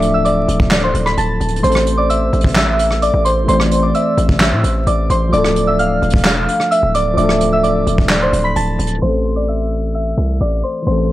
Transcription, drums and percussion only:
0.02 closed hi-hat medium
0.25 closed hi-hat medium
0.48 closed hi-hat medium
0.60 kick loud
0.71 snare loud
0.71 clap medium
0.71 closed hi-hat medium
0.94 closed hi-hat medium
1.06 cross-stick medium
1.17 closed hi-hat medium
1.41 closed hi-hat medium
1.48 closed hi-hat medium
1.56 closed hi-hat medium
1.64 closed hi-hat medium
1.71 cross-stick loud
1.71 closed hi-hat medium
1.79 closed hi-hat medium
1.87 closed hi-hat medium
2.10 closed hi-hat medium
2.33 closed hi-hat soft
2.41 kick loud
2.41 closed hi-hat medium
2.48 closed hi-hat medium
2.55 snare loud
2.55 clap medium
2.55 closed hi-hat medium
2.79 closed hi-hat medium
2.91 cross-stick medium
3.02 closed hi-hat medium
3.25 closed hi-hat medium
3.48 closed hi-hat medium
3.60 cross-stick loud
3.71 closed hi-hat medium
3.94 closed hi-hat medium
4.18 closed hi-hat medium
4.29 kick loud
4.40 snare loud
4.40 clap medium
4.40 closed hi-hat medium
4.64 closed hi-hat medium
4.87 closed hi-hat medium
5.10 closed hi-hat medium
5.33 closed hi-hat medium
5.44 cross-stick loud
5.56 closed hi-hat medium
5.79 closed hi-hat medium
6.02 closed hi-hat soft
6.10 kick loud
6.10 closed hi-hat medium
6.18 closed hi-hat medium
6.24 snare loud
6.24 clap medium
6.24 closed hi-hat medium
6.48 closed hi-hat medium
6.60 cross-stick medium
6.71 closed hi-hat medium
6.94 closed hi-hat medium
7.18 closed hi-hat medium
7.29 cross-stick loud
7.40 closed hi-hat medium
7.64 closed hi-hat medium
7.87 closed hi-hat medium
7.98 kick loud
7.98 closed hi-hat soft
8.09 snare loud
8.09 clap loud
8.09 closed hi-hat medium
8.33 closed hi-hat medium
8.56 closed hi-hat medium
8.79 closed hi-hat medium
8.87 closed hi-hat medium
8.94 closed hi-hat medium
9.02 closed hi-hat medium
9.10 closed hi-hat medium
9.18 closed hi-hat medium

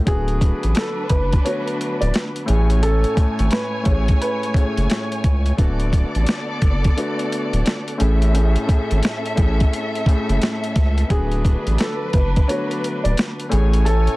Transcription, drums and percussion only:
0.07 kick loud
0.07 closed hi-hat medium
0.28 closed hi-hat soft
0.41 kick medium
0.41 closed hi-hat medium
0.63 closed hi-hat medium
0.75 snare loud
0.75 closed hi-hat medium
1.09 kick medium
1.09 closed hi-hat medium
1.32 kick medium
1.32 closed hi-hat medium
1.46 closed hi-hat loud
1.67 closed hi-hat soft
1.81 closed hi-hat medium
2.02 closed hi-hat soft
2.14 snare loud
2.14 closed hi-hat medium
2.36 closed hi-hat soft
2.48 closed hi-hat medium
2.70 closed hi-hat soft
2.83 closed hi-hat medium
3.04 closed hi-hat soft
3.17 kick loud
3.17 closed hi-hat medium
3.39 closed hi-hat medium
3.51 snare loud
3.51 closed hi-hat medium
3.85 kick medium
3.85 closed hi-hat medium
4.08 kick medium
4.08 closed hi-hat medium
4.22 closed hi-hat loud
4.43 closed hi-hat soft
4.54 kick medium
4.54 closed hi-hat medium
4.77 closed hi-hat soft
4.90 snare loud
4.90 closed hi-hat medium
5.12 closed hi-hat soft
5.24 kick loud
5.24 closed hi-hat medium
5.46 closed hi-hat soft
5.58 kick loud
5.58 closed hi-hat medium
5.80 closed hi-hat soft
5.93 kick loud
5.93 closed hi-hat medium
6.15 closed hi-hat medium
6.27 snare loud
6.27 closed hi-hat medium
6.62 kick medium
6.62 closed hi-hat medium
6.84 kick medium
6.84 closed hi-hat medium
6.98 closed hi-hat loud
7.19 closed hi-hat soft
7.32 closed hi-hat medium
7.53 closed hi-hat medium
7.66 snare loud
7.66 closed hi-hat medium
7.88 closed hi-hat soft
8.00 closed hi-hat medium
8.22 closed hi-hat soft
8.35 closed hi-hat loud
8.56 closed hi-hat soft
8.69 kick loud
8.69 closed hi-hat medium
8.91 closed hi-hat medium
9.03 snare loud
9.03 closed hi-hat medium
9.26 closed hi-hat soft
9.37 kick medium
9.37 closed hi-hat medium
9.60 kick medium
9.60 closed hi-hat medium
9.73 closed hi-hat loud
9.95 closed hi-hat soft
10.06 kick medium
10.06 closed hi-hat medium
10.29 closed hi-hat soft
10.42 snare loud
10.42 closed hi-hat medium
10.64 closed hi-hat soft
10.76 kick loud
10.76 snare soft
10.76 closed hi-hat medium
10.98 closed hi-hat soft
11.10 kick loud
11.10 closed hi-hat medium
11.32 closed hi-hat soft
11.45 kick medium
11.45 closed hi-hat medium
11.67 closed hi-hat medium
11.78 snare loud
11.78 closed hi-hat medium
12.13 kick medium
12.13 closed hi-hat medium
12.36 kick medium
12.36 closed hi-hat medium
12.49 closed hi-hat loud
12.71 closed hi-hat soft
12.84 closed hi-hat medium
13.05 closed hi-hat medium
13.17 snare loud
13.17 closed hi-hat medium
13.40 closed hi-hat soft
13.52 closed hi-hat medium
13.73 closed hi-hat soft
13.86 closed hi-hat loud
14.07 closed hi-hat soft

